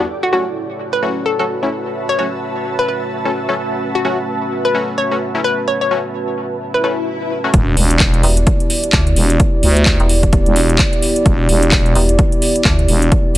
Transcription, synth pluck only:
0, 0, Header, 1, 2, 480
1, 0, Start_track
1, 0, Tempo, 465116
1, 98, Time_signature, 4, 2, 24, 8
1, 13805, End_track
2, 0, Start_track
2, 0, Title_t, "Synth pluck"
2, 0, Program_c, 0, 84
2, 238, Note_on_c, 0, 66, 88
2, 302, Note_off_c, 0, 66, 0
2, 337, Note_on_c, 0, 66, 75
2, 428, Note_off_c, 0, 66, 0
2, 959, Note_on_c, 0, 71, 90
2, 1094, Note_off_c, 0, 71, 0
2, 1297, Note_on_c, 0, 69, 84
2, 1388, Note_off_c, 0, 69, 0
2, 1439, Note_on_c, 0, 69, 79
2, 1502, Note_off_c, 0, 69, 0
2, 2158, Note_on_c, 0, 73, 94
2, 2222, Note_off_c, 0, 73, 0
2, 2257, Note_on_c, 0, 73, 74
2, 2347, Note_off_c, 0, 73, 0
2, 2878, Note_on_c, 0, 71, 90
2, 2942, Note_off_c, 0, 71, 0
2, 2977, Note_on_c, 0, 71, 76
2, 3067, Note_off_c, 0, 71, 0
2, 4077, Note_on_c, 0, 66, 95
2, 4142, Note_off_c, 0, 66, 0
2, 4177, Note_on_c, 0, 66, 75
2, 4267, Note_off_c, 0, 66, 0
2, 4798, Note_on_c, 0, 71, 90
2, 4934, Note_off_c, 0, 71, 0
2, 5138, Note_on_c, 0, 73, 90
2, 5304, Note_off_c, 0, 73, 0
2, 5618, Note_on_c, 0, 71, 94
2, 5784, Note_off_c, 0, 71, 0
2, 5858, Note_on_c, 0, 73, 92
2, 5948, Note_off_c, 0, 73, 0
2, 5999, Note_on_c, 0, 73, 78
2, 6062, Note_off_c, 0, 73, 0
2, 6959, Note_on_c, 0, 71, 84
2, 7022, Note_off_c, 0, 71, 0
2, 7057, Note_on_c, 0, 71, 75
2, 7148, Note_off_c, 0, 71, 0
2, 13805, End_track
0, 0, End_of_file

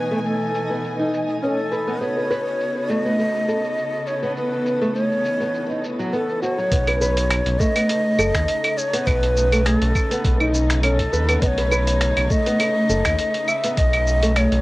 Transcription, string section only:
0, 0, Header, 1, 2, 480
1, 0, Start_track
1, 0, Tempo, 588235
1, 1641, Time_signature, 4, 2, 24, 8
1, 11926, End_track
2, 0, Start_track
2, 0, Title_t, "String section"
2, 0, Program_c, 0, 48
2, 0, Note_on_c, 0, 47, 66
2, 0, Note_on_c, 0, 52, 59
2, 0, Note_on_c, 0, 57, 58
2, 0, Note_on_c, 0, 80, 74
2, 1606, Note_off_c, 0, 57, 0
2, 1607, Note_off_c, 0, 47, 0
2, 1607, Note_off_c, 0, 52, 0
2, 1607, Note_off_c, 0, 80, 0
2, 1638, Note_on_c, 0, 49, 72
2, 1638, Note_on_c, 0, 59, 62
2, 1639, Note_on_c, 0, 66, 58
2, 1639, Note_on_c, 0, 69, 69
2, 3541, Note_off_c, 0, 66, 0
2, 3559, Note_on_c, 0, 52, 59
2, 5447, Note_off_c, 0, 49, 0
2, 5447, Note_off_c, 0, 59, 0
2, 5447, Note_off_c, 0, 69, 0
2, 5461, Note_off_c, 0, 52, 0
2, 5479, Note_on_c, 0, 49, 73
2, 5479, Note_on_c, 0, 57, 69
2, 5480, Note_on_c, 0, 63, 77
2, 11926, Note_off_c, 0, 49, 0
2, 11926, Note_off_c, 0, 57, 0
2, 11926, Note_off_c, 0, 63, 0
2, 11926, End_track
0, 0, End_of_file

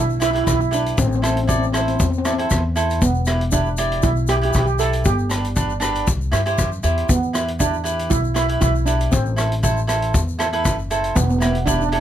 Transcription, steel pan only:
0, 0, Header, 1, 2, 480
1, 0, Start_track
1, 0, Key_signature, 1, "minor"
1, 0, Tempo, 509338
1, 919, Time_signature, 4, 2, 24, 8
1, 11310, End_track
2, 0, Start_track
2, 0, Title_t, "Steel pan"
2, 0, Program_c, 0, 114
2, 0, Note_on_c, 0, 64, 106
2, 188, Note_off_c, 0, 64, 0
2, 210, Note_on_c, 0, 64, 113
2, 273, Note_off_c, 0, 64, 0
2, 288, Note_on_c, 0, 64, 83
2, 344, Note_off_c, 0, 64, 0
2, 355, Note_on_c, 0, 64, 90
2, 404, Note_off_c, 0, 64, 0
2, 416, Note_on_c, 0, 64, 84
2, 479, Note_off_c, 0, 64, 0
2, 498, Note_on_c, 0, 64, 92
2, 559, Note_off_c, 0, 64, 0
2, 573, Note_on_c, 0, 64, 80
2, 627, Note_off_c, 0, 64, 0
2, 700, Note_on_c, 0, 62, 88
2, 913, Note_off_c, 0, 62, 0
2, 928, Note_on_c, 0, 60, 88
2, 993, Note_off_c, 0, 60, 0
2, 1016, Note_on_c, 0, 60, 70
2, 1072, Note_off_c, 0, 60, 0
2, 1088, Note_on_c, 0, 60, 72
2, 1135, Note_off_c, 0, 60, 0
2, 1146, Note_on_c, 0, 60, 59
2, 1196, Note_off_c, 0, 60, 0
2, 1208, Note_on_c, 0, 60, 64
2, 1272, Note_off_c, 0, 60, 0
2, 1283, Note_on_c, 0, 60, 55
2, 1342, Note_off_c, 0, 60, 0
2, 1352, Note_on_c, 0, 60, 65
2, 1411, Note_off_c, 0, 60, 0
2, 1423, Note_on_c, 0, 60, 54
2, 1480, Note_off_c, 0, 60, 0
2, 1491, Note_on_c, 0, 60, 66
2, 1554, Note_off_c, 0, 60, 0
2, 1567, Note_on_c, 0, 60, 56
2, 1614, Note_off_c, 0, 60, 0
2, 1625, Note_on_c, 0, 60, 66
2, 1691, Note_off_c, 0, 60, 0
2, 1705, Note_on_c, 0, 60, 52
2, 1759, Note_off_c, 0, 60, 0
2, 1770, Note_on_c, 0, 60, 62
2, 1831, Note_off_c, 0, 60, 0
2, 1845, Note_on_c, 0, 60, 54
2, 1904, Note_off_c, 0, 60, 0
2, 1915, Note_on_c, 0, 60, 66
2, 1975, Note_off_c, 0, 60, 0
2, 1986, Note_on_c, 0, 60, 58
2, 2047, Note_off_c, 0, 60, 0
2, 2058, Note_on_c, 0, 60, 70
2, 2114, Note_off_c, 0, 60, 0
2, 2126, Note_on_c, 0, 60, 61
2, 2189, Note_off_c, 0, 60, 0
2, 2199, Note_on_c, 0, 60, 79
2, 2261, Note_off_c, 0, 60, 0
2, 2846, Note_on_c, 0, 59, 103
2, 3290, Note_off_c, 0, 59, 0
2, 3317, Note_on_c, 0, 62, 92
2, 3765, Note_off_c, 0, 62, 0
2, 3799, Note_on_c, 0, 64, 97
2, 4041, Note_on_c, 0, 67, 111
2, 4047, Note_off_c, 0, 64, 0
2, 4101, Note_off_c, 0, 67, 0
2, 4112, Note_on_c, 0, 67, 79
2, 4181, Note_off_c, 0, 67, 0
2, 4193, Note_on_c, 0, 67, 86
2, 4237, Note_off_c, 0, 67, 0
2, 4248, Note_on_c, 0, 67, 74
2, 4308, Note_off_c, 0, 67, 0
2, 4319, Note_on_c, 0, 67, 86
2, 4379, Note_off_c, 0, 67, 0
2, 4390, Note_on_c, 0, 67, 79
2, 4463, Note_off_c, 0, 67, 0
2, 4519, Note_on_c, 0, 69, 99
2, 4743, Note_off_c, 0, 69, 0
2, 4763, Note_on_c, 0, 67, 104
2, 6163, Note_off_c, 0, 67, 0
2, 6689, Note_on_c, 0, 59, 101
2, 7130, Note_off_c, 0, 59, 0
2, 7168, Note_on_c, 0, 62, 102
2, 7635, Note_on_c, 0, 64, 107
2, 7657, Note_off_c, 0, 62, 0
2, 7865, Note_off_c, 0, 64, 0
2, 7876, Note_on_c, 0, 64, 109
2, 7985, Note_off_c, 0, 64, 0
2, 8114, Note_on_c, 0, 64, 108
2, 8346, Note_on_c, 0, 62, 94
2, 8363, Note_off_c, 0, 64, 0
2, 8457, Note_off_c, 0, 62, 0
2, 8592, Note_on_c, 0, 60, 103
2, 9997, Note_off_c, 0, 60, 0
2, 10513, Note_on_c, 0, 59, 103
2, 10580, Note_off_c, 0, 59, 0
2, 10591, Note_on_c, 0, 59, 80
2, 10641, Note_off_c, 0, 59, 0
2, 10653, Note_on_c, 0, 59, 82
2, 10718, Note_off_c, 0, 59, 0
2, 10730, Note_on_c, 0, 59, 76
2, 10784, Note_off_c, 0, 59, 0
2, 10795, Note_on_c, 0, 59, 84
2, 10856, Note_off_c, 0, 59, 0
2, 10868, Note_on_c, 0, 59, 69
2, 10940, Note_off_c, 0, 59, 0
2, 10985, Note_on_c, 0, 62, 102
2, 11059, Note_off_c, 0, 62, 0
2, 11071, Note_on_c, 0, 62, 71
2, 11129, Note_off_c, 0, 62, 0
2, 11141, Note_on_c, 0, 62, 92
2, 11196, Note_off_c, 0, 62, 0
2, 11207, Note_on_c, 0, 62, 74
2, 11275, Note_off_c, 0, 62, 0
2, 11310, End_track
0, 0, End_of_file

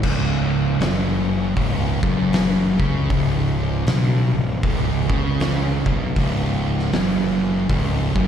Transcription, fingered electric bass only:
0, 0, Header, 1, 2, 480
1, 0, Start_track
1, 0, Tempo, 766284
1, 19, Time_signature, 4, 2, 24, 8
1, 5183, End_track
2, 0, Start_track
2, 0, Title_t, "Fingered electric bass"
2, 0, Program_c, 0, 33
2, 21, Note_on_c, 0, 25, 106
2, 476, Note_off_c, 0, 25, 0
2, 502, Note_on_c, 0, 30, 108
2, 956, Note_off_c, 0, 30, 0
2, 984, Note_on_c, 0, 25, 99
2, 1251, Note_off_c, 0, 25, 0
2, 1271, Note_on_c, 0, 30, 98
2, 1725, Note_off_c, 0, 30, 0
2, 1752, Note_on_c, 0, 37, 92
2, 1928, Note_off_c, 0, 37, 0
2, 1941, Note_on_c, 0, 25, 103
2, 2396, Note_off_c, 0, 25, 0
2, 2421, Note_on_c, 0, 35, 110
2, 2689, Note_off_c, 0, 35, 0
2, 2713, Note_on_c, 0, 25, 86
2, 2889, Note_off_c, 0, 25, 0
2, 2902, Note_on_c, 0, 25, 104
2, 3170, Note_off_c, 0, 25, 0
2, 3190, Note_on_c, 0, 37, 106
2, 3645, Note_off_c, 0, 37, 0
2, 3671, Note_on_c, 0, 35, 92
2, 3848, Note_off_c, 0, 35, 0
2, 3860, Note_on_c, 0, 25, 91
2, 4315, Note_off_c, 0, 25, 0
2, 4341, Note_on_c, 0, 30, 106
2, 4795, Note_off_c, 0, 30, 0
2, 4820, Note_on_c, 0, 25, 104
2, 5089, Note_off_c, 0, 25, 0
2, 5109, Note_on_c, 0, 30, 97
2, 5183, Note_off_c, 0, 30, 0
2, 5183, End_track
0, 0, End_of_file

